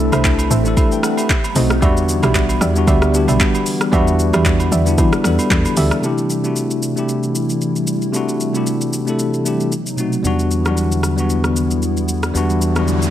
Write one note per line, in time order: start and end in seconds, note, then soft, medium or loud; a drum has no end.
0.00 0.11 C2 loud
0.00 1.26 E3 medium
0.00 1.26 G3 medium
0.00 0.64 A3 loud
0.00 1.78 A3 medium
0.00 1.78 C4 medium
0.00 0.65 D4 loud
0.00 1.28 D4 medium
0.00 0.66 E4 loud
0.00 0.78 G4 loud
0.00 0.68 A4 loud
0.12 0.50 C2 medium
0.12 0.48 A4 medium
0.12 0.48 C5 medium
0.12 0.48 E5 medium
0.12 cross-stick medium
0.12 high agogo medium
0.12 shaker medium
0.24 kick medium
0.24 clap loud
0.24 shaker medium
0.39 high agogo medium
0.39 shaker medium
0.50 0.76 A1 loud
0.50 0.75 A4 medium
0.50 0.75 C5 medium
0.50 0.75 E5 medium
0.50 shaker loud
0.64 0.96 A3 medium
0.64 0.96 D4 medium
0.64 0.97 E4 medium
0.64 0.78 A4 loud
0.64 shaker medium
0.77 0.92 G4 medium
0.77 0.91 E5 medium
0.77 kick loud
0.77 high agogo medium
0.77 shaker medium
0.92 1.03 B4 medium
0.92 1.03 G5 medium
0.92 shaker soft
1.03 1.18 A4 medium
1.03 1.17 F#5 medium
1.03 cross-stick loud
1.03 shaker loud
1.18 1.44 G4 medium
1.18 1.43 E5 medium
1.18 high agogo medium
1.18 shaker medium
1.30 1.82 F#3 medium
1.30 5.99 B3 medium
1.30 1.82 D#4 medium
1.30 kick loud
1.30 clap loud
1.30 shaker medium
1.44 high agogo medium
1.44 shaker medium
1.55 1.84 B1 loud
1.55 1.77 A3 medium
1.55 1.78 C4 medium
1.55 1.78 D#4 medium
1.55 1.79 F#4 loud
1.55 1.69 A4 medium
1.55 1.69 C5 medium
1.55 1.69 D#5 medium
1.55 open hi-hat medium
1.55 shaker medium
1.70 cross-stick loud
1.70 shaker medium
1.81 2.22 E2 loud
1.81 5.99 D3 medium
1.81 5.99 E3 medium
1.81 2.56 G3 loud
1.81 5.99 G3 medium
1.81 2.56 B3 loud
1.81 2.57 D4 loud
1.81 5.99 E4 medium
1.81 2.58 F#4 loud
1.81 1.95 G4 loud
1.81 1.95 D5 medium
1.81 1.95 E5 loud
1.81 kick loud
1.81 high agogo medium
1.81 shaker medium
1.97 shaker medium
2.09 shaker medium
2.23 2.60 B1 medium
2.23 2.58 G4 medium
2.23 2.58 D5 medium
2.23 2.59 E5 medium
2.23 cross-stick loud
2.23 high agogo medium
2.23 shaker medium
2.35 kick medium
2.35 clap loud
2.35 shaker medium
2.49 high agogo medium
2.49 shaker medium
2.61 2.87 E2 loud
2.61 2.85 G4 medium
2.61 2.86 D5 medium
2.61 2.86 E5 medium
2.61 cross-stick medium
2.61 shaker loud
2.74 3.06 G3 medium
2.74 3.07 B3 medium
2.74 3.07 D4 medium
2.74 3.08 F#4 loud
2.74 shaker medium
2.87 3.27 D2 loud
2.87 3.25 G4 medium
2.87 3.25 D5 medium
2.87 3.25 E5 loud
2.87 kick loud
2.87 high agogo medium
2.87 shaker medium
3.02 cross-stick loud
3.02 shaker soft
3.12 3.77 G3 loud
3.12 3.78 B3 medium
3.12 3.79 D4 medium
3.12 3.79 G4 loud
3.12 shaker loud
3.28 3.40 B1 medium
3.28 3.39 G4 medium
3.28 3.39 D5 medium
3.28 3.39 E5 medium
3.28 high agogo medium
3.28 shaker medium
3.40 kick loud
3.40 clap loud
3.40 shaker medium
3.55 high agogo medium
3.55 shaker medium
3.66 open hi-hat medium
3.66 shaker medium
3.81 cross-stick loud
3.81 shaker soft
3.91 4.32 E2 loud
3.91 4.66 G3 loud
3.91 4.67 B3 loud
3.91 4.68 D4 loud
3.91 4.68 F#4 loud
3.91 4.05 G4 loud
3.91 4.05 D5 medium
3.91 4.06 E5 loud
3.91 kick loud
3.91 high agogo medium
3.91 shaker medium
4.07 shaker medium
4.19 shaker medium
4.33 4.71 E2 loud
4.33 4.69 G4 medium
4.33 4.69 D5 medium
4.33 4.69 E5 medium
4.33 cross-stick loud
4.33 high agogo medium
4.33 shaker medium
4.45 kick medium
4.45 clap loud
4.45 shaker medium
4.60 high agogo medium
4.60 shaker medium
4.71 4.97 E2 loud
4.71 4.96 G4 medium
4.71 4.96 D5 medium
4.71 4.96 E5 medium
4.71 shaker loud
4.85 5.17 G3 medium
4.85 5.17 B3 medium
4.85 5.18 D4 medium
4.85 5.19 E4 loud
4.85 shaker medium
4.98 5.12 E3 loud
4.98 kick loud
4.98 high agogo medium
4.98 shaker medium
5.13 cross-stick loud
5.13 shaker soft
5.23 5.38 E2 loud
5.23 5.67 G3 medium
5.23 5.68 B3 medium
5.23 5.68 D4 medium
5.23 5.69 A4 medium
5.23 cross-stick loud
5.23 shaker loud
5.39 high agogo medium
5.39 shaker medium
5.51 5.65 E2 loud
5.51 kick loud
5.51 clap loud
5.51 shaker medium
5.65 high agogo medium
5.65 shaker medium
5.75 5.91 D2 medium
5.75 5.98 G3 medium
5.75 5.99 B3 medium
5.75 5.99 D4 medium
5.75 5.90 G4 medium
5.75 6.00 A4 loud
5.75 5.90 D5 medium
5.75 5.90 E5 medium
5.75 open hi-hat medium
5.75 shaker medium
5.91 cross-stick loud
5.91 shaker medium
6.02 6.35 C3 loud
6.02 10.21 C3 medium
6.02 9.68 E3 medium
6.02 9.68 G3 medium
6.02 6.35 A3 medium
6.02 10.21 A3 medium
6.02 6.36 D4 medium
6.02 9.68 E4 medium
6.02 6.36 E4 loud
6.02 6.37 G4 loud
6.02 shaker medium
6.18 shaker soft
6.30 shaker medium
6.43 6.84 C3 medium
6.43 6.85 A3 medium
6.43 6.85 D4 medium
6.43 6.86 E4 medium
6.43 6.86 F#4 medium
6.43 shaker soft
6.56 shaker medium
6.71 shaker medium
6.83 shaker medium
6.95 7.80 C3 medium
6.95 7.80 A3 medium
6.95 7.81 D4 medium
6.95 7.81 E4 medium
6.95 7.82 G4 medium
6.95 shaker soft
7.09 shaker medium
7.23 shaker soft
7.35 shaker medium
7.50 shaker medium
7.61 shaker medium
7.76 shaker soft
7.87 shaker medium
8.02 shaker soft
8.13 8.45 C3 loud
8.13 8.46 A3 loud
8.13 8.46 D4 loud
8.13 8.47 E4 medium
8.13 8.47 F#4 loud
8.13 shaker medium
8.29 shaker soft
8.40 shaker medium
8.53 8.95 C3 medium
8.53 8.96 A3 medium
8.53 8.96 D4 medium
8.53 8.97 E4 medium
8.53 8.97 G4 medium
8.53 shaker medium
8.67 shaker medium
8.81 shaker medium
8.93 shaker medium
9.06 9.38 C3 medium
9.06 9.38 A3 medium
9.06 9.39 D4 medium
9.06 9.39 E4 medium
9.06 9.40 A4 medium
9.06 shaker soft
9.19 shaker medium
9.34 shaker soft
9.44 9.71 C3 medium
9.44 9.72 A3 medium
9.44 9.72 D4 medium
9.44 9.73 E4 medium
9.44 9.73 G4 medium
9.44 shaker loud
9.60 shaker medium
9.72 10.24 F#3 medium
9.72 13.10 B3 medium
9.72 10.24 D#4 medium
9.72 shaker medium
9.86 shaker medium
9.97 10.19 B2 medium
9.97 10.20 A3 medium
9.97 10.20 C4 medium
9.97 10.20 D#4 medium
9.97 10.21 F#4 medium
9.97 shaker medium
10.12 shaker soft
10.23 12.31 E2 medium
10.23 13.10 D3 medium
10.23 13.10 E3 medium
10.23 10.56 G3 loud
10.23 13.10 G3 medium
10.23 10.56 B3 loud
10.23 10.57 D4 loud
10.23 13.10 E4 medium
10.23 10.58 F#4 loud
10.23 shaker medium
10.39 shaker medium
10.51 shaker medium
10.64 10.70 F#3 medium
10.64 11.06 B3 medium
10.64 11.07 D4 medium
10.64 11.07 F#4 medium
10.64 cross-stick medium
10.64 shaker soft
10.70 11.09 G3 medium
10.77 shaker medium
10.92 shaker medium
11.03 cross-stick medium
11.03 shaker medium
11.17 12.01 G3 medium
11.17 12.02 B3 medium
11.17 12.02 D4 medium
11.17 12.03 F#4 loud
11.17 shaker medium
11.30 shaker medium
11.44 cross-stick medium
11.44 shaker soft
11.56 shaker medium
11.71 shaker medium
11.82 shaker medium
11.97 shaker soft
12.08 shaker medium
12.23 cross-stick medium
12.23 shaker soft
12.34 13.10 E2 medium
12.34 12.66 G3 loud
12.34 12.67 B3 loud
12.34 12.68 D4 loud
12.34 12.68 F#4 loud
12.34 riser medium
12.34 shaker medium
12.50 shaker soft
12.62 shaker medium
12.75 12.81 F#3 medium
12.75 13.10 B3 medium
12.75 13.10 D4 medium
12.75 13.10 F#4 medium
12.75 cross-stick medium
12.75 shaker soft
12.81 13.10 G3 medium
12.88 shaker medium
13.02 shaker medium